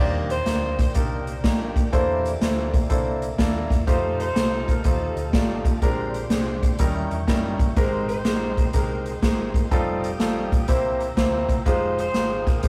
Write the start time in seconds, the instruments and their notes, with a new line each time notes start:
Already playing: fingered electric bass D#2, grand piano D#3 A#3 D4 D#4 G4 D5, saxophone section G4, tonewheel organ G4 A#4 D5 G5
0.00 saxophone section C5
0.30 saxophone section G4 C5, closed hi-hat
0.46 fingered electric bass D2, grand piano A#3 D4 D#4 G4 D5, snare, closed hi-hat
0.79 saxophone section C5, kick, snare, closed hi-hat
0.94 fingered electric bass C2, grand piano A#3 D4 D#4 G4 D5, saxophone section D4 G4 A#4, kick, closed hi-hat
1.27 closed hi-hat
1.43 fingered electric bass A#1, grand piano A#3 D4 D#4 G4 D#5, saxophone section A#3 D4 G4, kick, snare, closed hi-hat
1.76 kick, closed hi-hat
1.92 fingered electric bass E2, grand piano E3 A#3 D4 E4 A4 C5, saxophone section A#3 C4 G4, tonewheel organ A4 D5 E5, kick, closed hi-hat
2.25 closed hi-hat
2.41 fingered electric bass D2, grand piano A#3 D4 E4 A4 C5, snare, closed hi-hat
2.74 kick, closed hi-hat
2.90 fingered electric bass C2, grand piano A#3 D4 E4 A4 C5, kick, closed hi-hat
3.22 closed hi-hat
3.38 fingered electric bass D#2, grand piano A#3 D4 E4 A4 D5, kick, snare, closed hi-hat
3.70 fingered electric bass E2, kick, snare, closed hi-hat
3.87 fingered electric bass F2, grand piano A3 D#4 F4 G4 C5, saxophone section D#4 A4 C5, tonewheel organ G4 F5 A5, kick, closed hi-hat
4.19 saxophone section D#4 A4 C5, closed hi-hat
4.35 fingered electric bass C2, grand piano A3 D#4 F4 G4 C5, snare, closed hi-hat
4.68 saxophone section A#4, kick, closed hi-hat
4.84 fingered electric bass D#2, grand piano A3 D#4 F4 G4 C5, saxophone section C4 D#4 A4, kick, closed hi-hat
5.16 fingered electric bass D2, closed hi-hat
5.33 grand piano A3 D#4 F4 G4 D5, saxophone section C4 D#4 G4, kick, snare, closed hi-hat
5.65 fingered electric bass A1, kick, closed hi-hat
5.82 fingered electric bass A#1, grand piano A#2 G#3 C4 D4 G4 A#4, tonewheel organ G#3 D5 G5 C6, saxophone section C4 D4 G4, kick, closed hi-hat
6.14 closed hi-hat
6.29 fingered electric bass C2, grand piano G#3 C4 D4 G4 C5, snare, closed hi-hat
6.63 kick, closed hi-hat
6.79 fingered electric bass D#2, grand piano D#3 G3 C#4 D#4 E4 A#4, tonewheel organ G4 E5 G5 C#6, kick, closed hi-hat
7.11 fingered electric bass E2, closed hi-hat
7.27 fingered electric bass F#1, grand piano G3 C#4 D#4 E4 A#4, kick, snare, closed hi-hat
7.59 fingered electric bass G1, kick, closed hi-hat
7.76 fingered electric bass G#1, grand piano G#2 G#3 C4 D#4 G4 A#4, saxophone section D#4 G4 C5, tonewheel organ A#4 D#5 G5 C6, kick, closed hi-hat
8.08 saxophone section D#4 G4 C5, closed hi-hat
8.25 fingered electric bass A#1, grand piano G#3 C4 D#4 G4 A#4, snare, closed hi-hat
8.57 kick, closed hi-hat
8.73 fingered electric bass C2, grand piano G#3 C4 D#4 G4 A#4, saxophone section D#4 G4 A#4, kick, closed hi-hat
9.06 saxophone section G#4, closed hi-hat
9.22 fingered electric bass G#1, grand piano G#3 C4 D#4 G4 C5, saxophone section A#3 C4 G4, kick, snare, closed hi-hat
9.54 kick, closed hi-hat
9.71 fingered electric bass F1, grand piano G3 C4 D#4 F4 A4, saxophone section C4 D#4 G4, tonewheel organ A4 F5 D#6, kick, closed hi-hat
10.04 closed hi-hat
10.20 fingered electric bass A1, grand piano G3 C4 D#4 F4 A4, snare, closed hi-hat
10.52 kick, closed hi-hat
10.68 fingered electric bass C2, grand piano C3 A#3 C4 E4 G4 C5, tonewheel organ C5 A#5 E6, kick, closed hi-hat
11.00 closed hi-hat
11.17 fingered electric bass D2, grand piano A#3 C4 E4 G4 C5, kick, snare, closed hi-hat
11.49 fingered electric bass C2, kick, closed hi-hat
11.65 fingered electric bass F1, grand piano G#3 D#4 F4 G4 C5, tonewheel organ G#3 F5 D#6, saxophone section D#4 G#4 C5, kick, closed hi-hat
11.98 saxophone section D#4 G#4 C5, closed hi-hat
12.14 fingered electric bass G#1, grand piano G#3 D#4 F4 G4 C5, snare, closed hi-hat
12.46 saxophone section D#4 G4 A#4, kick, snare, closed hi-hat
12.63 fingered electric bass G1, grand piano G#3 D#4 F4 G4 C5, kick, closed hi-hat